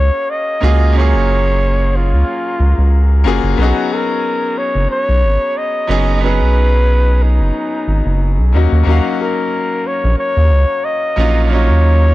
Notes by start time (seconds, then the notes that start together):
Already playing: C#2 A#3 C#4 F#4 G#4 C#5 F5
0.30 D#5
0.61 C#2 A#3 C#4 F4 F#4 G#4
0.92 A#3 C#4 F4
0.98 F#3 G#4 C#5
1.14 F#1
1.97 F4
2.12 C#2
2.60 C#2
2.78 C#2
3.24 F#1 A#3 C#4 F4 F#4 G#4
3.43 F#1
3.56 B1 F#3 B3 C#4 F#4
3.61 D#4 G#4
3.93 A#4
4.58 C#5
4.75 F#1
4.91 C#5
5.09 B1
5.23 G#1
5.58 D#5
5.87 F#1 F#3 B3 C#4 D#4 G#4
6.19 F#3 B3 C#4
6.23 D#4 G#4 B4
6.41 B1
7.23 D#4
7.40 F#1
7.88 G#1
8.06 F#1
8.38 B1
8.53 D#2 F#3 A#3 C#4 D#4 F#4
8.72 D#2
8.83 D#2 F#3 A#3 C#4
8.88 D#4 F#4 F5
9.22 A#4
9.87 C#5
10.04 A#1
10.19 C#5
10.37 D#2
10.51 C#2
10.85 D#5
11.16 A#1 F#3 A#3 C#4 D#4 F4
11.44 F#3 D#5
11.49 A#3 C#4 D#4 C#5
11.55 F4
11.69 D#2